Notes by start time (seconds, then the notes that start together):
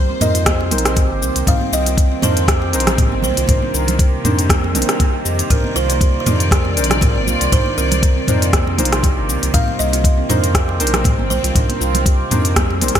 Already playing: C2 C3 D#3 A#3 D4 D#4 A#4 C5
0.10 C4
0.21 F2 C4 D#4 A#4 C5 D#5, closed hi-hat, mid tom, muted conga, high conga, low conga, shaker
0.35 F4, closed hi-hat, shaker
0.46 kick, cross-stick, closed hi-hat, high conga, shaker
0.60 C4, muted conga
0.71 A#1 C4 D#4 A#4 C5, closed hi-hat, high conga, low conga, shaker
0.78 closed hi-hat
0.85 cross-stick, closed hi-hat, shaker
0.96 G4, kick, closed hi-hat, muted conga, high conga, shaker
1.10 G1
1.22 C2 C4, shaker
1.36 C2, closed hi-hat, shaker
1.47 C2 G3 C4 D#4 A#4 C5 F5, kick, closed hi-hat, mid tom, muted conga, shaker
1.61 C4, high conga
1.72 C2 D#5, shaker
1.86 F4, closed hi-hat, muted conga, shaker
1.98 kick, closed hi-hat, shaker
2.12 C4
2.22 F2 D4 D#4 A#4 C5, closed hi-hat, mid tom, muted conga, high conga, low conga, shaker
2.37 closed hi-hat, shaker
2.48 G4, kick, cross-stick, closed hi-hat, shaker
2.62 muted conga
2.73 A#1 C4 D4 D#4 A#4 C5, closed hi-hat, shaker
2.80 closed hi-hat
2.87 cross-stick, closed hi-hat, low conga, shaker
2.98 G3, kick, closed hi-hat, mid tom, muted conga, high conga, shaker
3.12 G1 C4, high conga
3.23 C2 C5, high conga, low conga, shaker
3.37 C2 F4, closed hi-hat, shaker
3.48 C2 D4 D#4 A#4 C5, kick, closed hi-hat, mid tom, muted conga, shaker
3.62 C4, high conga
3.74 C2 A#4, shaker
3.87 closed hi-hat, muted conga, low conga, shaker
3.99 G4, kick, closed hi-hat, shaker
4.24 F2 C4 D4 D#4 A#4 C5, closed hi-hat, mid tom, muted conga, high conga, low conga, shaker
4.39 closed hi-hat, shaker
4.50 G3, kick, cross-stick, closed hi-hat, high conga, shaker
4.63 C4, muted conga
4.75 A#1 C4 D4 D#4 A#4 C5, closed hi-hat, high conga, low conga, shaker
4.82 closed hi-hat
4.89 C4, cross-stick, closed hi-hat, shaker
5.00 kick, closed hi-hat, muted conga, high conga, shaker
5.14 D#4
5.25 F2 G4, shaker
5.39 closed hi-hat, shaker
5.50 C2 D4 D#4 A#4 C5 D5, kick, closed hi-hat, mid tom, muted conga, shaker
5.64 C4, high conga
5.75 C2 F4 C5, shaker
5.90 closed hi-hat, muted conga, shaker
6.01 G4, kick, closed hi-hat, shaker
6.20 C5
6.26 F2 C4 D4 D#4 A#4 C5, closed hi-hat, mid tom, muted conga, high conga, low conga, shaker
6.40 closed hi-hat, shaker
6.51 G3, kick, cross-stick, closed hi-hat, shaker
6.65 C4, muted conga
6.76 A#1 D4 D#4 A#4 C5, closed hi-hat, shaker
6.84 closed hi-hat
6.90 F4, cross-stick, closed hi-hat, low conga, shaker
7.01 A#4, kick, closed hi-hat, mid tom, muted conga, high conga, shaker
7.16 G1 C4, high conga
7.27 C2 F4, high conga, low conga, shaker
7.41 C2, closed hi-hat, shaker
7.52 C2 D4 D#4 G4 A#4 C5, kick, closed hi-hat, mid tom, muted conga, shaker
7.66 high conga
7.77 C2 C4 A#4, shaker
7.91 closed hi-hat, muted conga, low conga, shaker
8.03 G3, kick, closed hi-hat, shaker
8.17 C4
8.28 F2 D4 D#4 A#4 C5, closed hi-hat, mid tom, muted conga, high conga, low conga, shaker
8.42 F4, closed hi-hat, shaker
8.53 kick, cross-stick, closed hi-hat, high conga, shaker
8.67 C4, muted conga
8.78 A#1 D4 D#4 F4 A#4 C5, closed hi-hat, high conga, low conga, shaker
8.85 closed hi-hat
8.93 cross-stick, closed hi-hat, shaker
9.03 G4, kick, closed hi-hat, muted conga, high conga, shaker
9.17 G1
9.29 C2 C4, shaker
9.43 C2, closed hi-hat, shaker
9.54 C2 G3 C4 D#4 A#4 C5 F5, kick, closed hi-hat, mid tom, muted conga, shaker
9.68 C4, high conga
9.79 C2 D#5, shaker
9.93 F4, closed hi-hat, muted conga, shaker
10.04 kick, closed hi-hat, shaker
10.18 C4
10.29 F2 D4 D#4 F4 A#4 C5, closed hi-hat, mid tom, muted conga, high conga, low conga, shaker
10.44 closed hi-hat, shaker
10.55 G4, kick, cross-stick, closed hi-hat, shaker
10.69 muted conga
10.80 A#1 C4 D4 D#4 A#4 C5, closed hi-hat, shaker
10.87 closed hi-hat
10.94 cross-stick, closed hi-hat, low conga, shaker
11.04 G3, kick, closed hi-hat, mid tom, muted conga, high conga, shaker
11.19 G1 C4, high conga
11.30 C2 C5, high conga, low conga, shaker
11.44 C2 F4, closed hi-hat, shaker
11.55 C2 D4 D#4 A#4 C5, kick, closed hi-hat, mid tom, muted conga, shaker
11.69 C4, closed hi-hat, high conga
11.80 C2 F4, shaker
11.95 closed hi-hat, muted conga, low conga, shaker
12.06 G4, kick, closed hi-hat, shaker
12.31 F2 C4 D4 D#4 A#4 C5, closed hi-hat, mid tom, muted conga, high conga, low conga, shaker
12.45 closed hi-hat, shaker
12.56 G3, kick, cross-stick, closed hi-hat, high conga, shaker
12.70 C4, muted conga
12.81 A#1 D4 D#4 A#4 C5, closed hi-hat, high conga, low conga, shaker
12.88 closed hi-hat
12.95 F4, kick, cross-stick, closed hi-hat, shaker